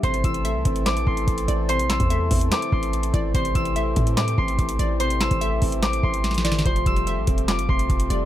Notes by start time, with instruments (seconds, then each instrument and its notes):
Already playing: harp D5 E5
0.03 808-style bass A1, grand piano C3, harmonium E3 A3 C4 A4, synth pluck C5, harp C6, kick, closed hi-hat
0.14 closed hi-hat
0.24 808-style bass A1, grand piano E3, harp E6, kick, closed hi-hat
0.34 closed hi-hat
0.45 grand piano A3, synth pluck E5, closed hi-hat
0.55 808-style bass C2
0.65 808-style bass A1, grand piano C4, kick, closed hi-hat
0.76 closed hi-hat
0.86 grand piano C5, harp D6, snare, clap, closed hi-hat
0.96 808-style bass A#1, closed hi-hat
1.07 808-style bass A1, grand piano C4, harp C6, kick
1.17 closed hi-hat
1.28 808-style bass A1, kick, closed hi-hat
1.38 closed hi-hat
1.48 808-style bass A1, grand piano E3, synth pluck D5, closed hi-hat
1.69 grand piano C3, synth pluck C5, harp C6, closed hi-hat
1.79 808-style bass A#1, closed hi-hat
1.89 grand piano E3, harp E6, snare, clap, closed hi-hat
2.00 808-style bass E2, kick, closed hi-hat
2.10 grand piano A3, synth pluck E5, closed hi-hat
2.31 808-style bass E2, grand piano C4, kick, open hi-hat
2.41 closed hi-hat
2.52 grand piano C5, harp D6, snare, clap, closed hi-hat
2.62 closed hi-hat
2.72 808-style bass A1, grand piano C4, harp C6, kick
2.83 closed hi-hat
2.93 closed hi-hat
3.03 closed hi-hat
3.14 808-style bass A1, grand piano E3, synth pluck D5, kick, closed hi-hat
3.34 808-style bass A1, grand piano C3, harmonium G4, synth pluck C5, harp C6, kick, closed hi-hat
3.45 closed hi-hat
3.55 808-style bass A1, grand piano E3, harp E6, kick, closed hi-hat
3.65 closed hi-hat
3.76 grand piano A3, synth pluck E5, closed hi-hat
3.96 808-style bass A2, grand piano C4, kick, closed hi-hat
4.07 closed hi-hat
4.17 grand piano C5, harp D6, snare, clap, closed hi-hat
4.28 closed hi-hat
4.38 808-style bass A1, grand piano C4, harp C6, kick
4.48 closed hi-hat
4.59 808-style bass A1, kick, closed hi-hat
4.69 closed hi-hat
4.79 808-style bass A1, grand piano E3, synth pluck D5, closed hi-hat
5.00 grand piano C3, synth pluck C5, harp C6, closed hi-hat
5.10 closed hi-hat
5.21 grand piano E3, harp E6, snare, clap, closed hi-hat
5.31 808-style bass A1, kick, closed hi-hat
5.41 grand piano A3, synth pluck E5, closed hi-hat
5.62 808-style bass A1, grand piano C4, kick, open hi-hat
5.72 closed hi-hat
5.83 grand piano C5, harp D6, snare, clap, closed hi-hat
5.93 closed hi-hat
6.03 808-style bass A1, grand piano C4, harp C6, kick
6.14 closed hi-hat
6.24 snare, closed hi-hat
6.31 snare, closed hi-hat
6.38 snare
6.44 grand piano E3, synth pluck D5, snare, closed hi-hat
6.52 snare
6.59 snare
6.65 808-style bass F1, grand piano F3, harmonium F3 C4 G4, synth pluck C5, harp C6, kick, closed hi-hat
6.76 closed hi-hat
6.86 808-style bass F1, grand piano G3, harp E6, kick, closed hi-hat
6.96 closed hi-hat
7.07 grand piano A3, synth pluck E5, closed hi-hat
7.17 808-style bass A1
7.27 808-style bass F1, grand piano C4, kick, closed hi-hat
7.38 closed hi-hat
7.48 grand piano F4, harp D6, snare, clap, closed hi-hat
7.58 808-style bass G1, closed hi-hat
7.69 808-style bass F1, grand piano C4, harp C6, kick
7.79 closed hi-hat
7.90 808-style bass F1, kick, closed hi-hat
8.00 closed hi-hat
8.10 808-style bass F1, grand piano G3, synth pluck D5, closed hi-hat